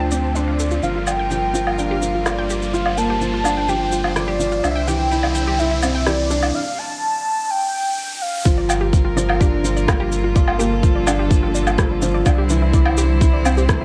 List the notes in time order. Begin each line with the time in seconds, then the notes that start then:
Already playing: D2 D3 F3 A3 C4 D4 F4 C5 G5, riser
0.00 A5
0.11 C4 D5, shaker
0.24 A5
0.35 D4 C5 D5, shaker
0.48 F5
0.59 A4, shaker
0.71 F4, shaker
0.83 G1 F3 G3 A#3 A#4 F5, shaker
0.96 F4
1.07 D5 G5, low woodblock, shaker
1.19 G5
1.31 F3 G4, shaker
1.54 F3 F4, shaker
1.67 D5, low woodblock
1.78 D4 F5 G5, shaker
1.91 G4
2.01 F3, shaker
2.15 F4
2.25 F4 D5, cross-stick, low woodblock, shaker
2.38 G5
2.50 G4, shaker
2.62 shaker
2.73 F4 C5 F5, shaker
2.86 D5, low woodblock
2.97 A#3 G5 A5, shaker
3.10 G4
3.21 F3, shaker
3.34 F4
3.44 D4 D5, low woodblock, shaker
3.57 G5
3.68 F3 G4 G5, shaker
3.92 F4, shaker
4.04 D5, low woodblock
4.16 F3 D5 G5, cross-stick, shaker
4.28 G4
4.39 F3, shaker
4.52 F4, shaker
4.63 C2 D3 C4 D4 E4 D5 E5, low woodblock, shaker
4.76 G5
4.87 E3 G4 G5, shaker
5.11 E4, shaker
5.23 D5, low woodblock
5.35 G5, shaker
5.47 G4
5.59 E4 E5, shaker
5.71 E4
5.83 C4 D5, low woodblock, shaker
5.95 G5
6.06 E3 G4 D5, cross-stick, shaker
6.31 D4 E4, shaker
6.43 D5, low woodblock, shaker
6.55 F5
6.78 A5
7.50 G5
8.22 F5
8.45 G1 D3 F3 G3 A#3 F4 A#4, kick, shaker
8.58 D5
8.69 G5, low woodblock, shaker
8.81 G4
8.93 F3, kick, shaker
9.05 F4
9.17 F3 D5, shaker
9.29 G5, low woodblock
9.40 D4 G4, kick, shaker
9.64 F3 F4, shaker
9.77 D5, shaker
9.87 F4 G5, kick, cross-stick, low woodblock, shaker
10.00 G4
10.12 shaker
10.24 F4
10.35 F4 A4 D5, kick, shaker
10.48 G5, low woodblock
10.59 A#3 G4, shaker
10.83 F3 F4, kick, shaker
10.95 D5
11.07 D4 G5, low woodblock, shaker
11.19 G4
11.30 F3, kick, shaker
11.43 F4
11.55 D5, shaker
11.67 G5, low woodblock, shaker
11.78 F3 G4, kick, cross-stick, shaker
12.02 F3 F4, shaker
12.14 D5
12.25 C2 C4 D4 E4 C5 G5, kick, low woodblock, shaker
12.38 G4
12.49 E3, shaker
12.62 E4
12.73 E4 D5, kick, shaker
12.85 G5, low woodblock
12.97 G4, shaker
13.21 E4, kick, shaker
13.33 D5
13.45 C4 G5, low woodblock, shaker
13.57 G4, shaker
13.69 E3, kick, cross-stick, shaker
13.81 E4